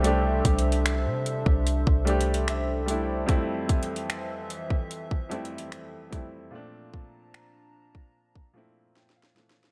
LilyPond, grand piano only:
<<
  \new Staff \with { instrumentName = "Grand piano" } { \time 4/4 \key c \mixolydian \tempo 4 = 74 r2. \tuplet 3/2 { e''4 g''8 } | r1 | r2. g''16 f''8. | }
  \new Staff \with { instrumentName = "Grand piano" } { \time 4/4 \key c \mixolydian <g a d' g'>2 r8 <g a d' g'>4 <g a d' e'>8 | <f, g a c' e'>2 r8 <f, g a c' e'>4 <f, g a c' e'>8 | <bes, f a c' d'>2 r8 <bes, f a c' e'>4 <bes, e f a c'>8 | }
>>